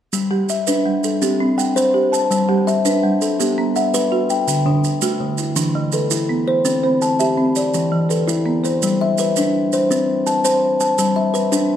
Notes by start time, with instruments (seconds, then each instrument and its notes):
0.13 kalimba G3, maracas
0.31 marimba G3 G4
0.49 kalimba E5, maracas
0.67 kalimba D4, marimba B4, maracas
0.86 marimba G3
1.04 kalimba A4, maracas
1.22 kalimba C4, marimba G4, maracas
1.40 marimba C4
1.58 kalimba F#5, marimba G5, maracas
1.76 kalimba C5, maracas
1.94 marimba G4
2.12 marimba A5, kalimba A5, maracas
2.31 kalimba G3, maracas
2.49 marimba G3 G4
2.67 kalimba E5, maracas
2.85 kalimba D4, marimba B4, maracas
3.03 marimba G3
3.21 kalimba A4, maracas
3.40 kalimba B3, marimba G4, maracas
3.58 marimba B3
3.76 kalimba E5, marimba F#5, maracas
3.94 kalimba B4, maracas
4.12 marimba F#4
4.30 kalimba G5, maracas
4.48 kalimba D3, maracas
4.66 marimba D3 D4
4.84 maracas
5.02 kalimba A3, marimba F#4, maracas
5.20 marimba D3
5.38 kalimba E4, maracas
5.56 kalimba E3, marimba D4, maracas
5.75 marimba E3
5.92 kalimba A4, marimba B4, maracas
6.11 kalimba E4, maracas
6.29 marimba B3
6.48 marimba C5, kalimba C5
6.65 kalimba C4, maracas
6.84 marimba C4 C5
7.02 kalimba A5, maracas
7.19 kalimba G4, marimba E5, maracas
7.38 marimba C4
7.56 kalimba D5, maracas
7.74 kalimba E3, maracas
7.92 marimba E3
8.09 kalimba A4, marimba B4, maracas
8.28 kalimba E4, maracas
8.46 marimba B3
8.64 marimba C5, kalimba C5, maracas
8.82 kalimba G3, maracas
9.01 kalimba E5
9.18 kalimba B4, maracas
9.36 kalimba D4, maracas
9.72 kalimba C5, maracas
9.91 kalimba C4, maracas
10.27 kalimba A5, maracas
10.45 kalimba C5, maracas
10.80 kalimba A5, maracas
10.98 kalimba G3, maracas
11.16 kalimba E5
11.34 kalimba B4, maracas
11.52 kalimba D4, maracas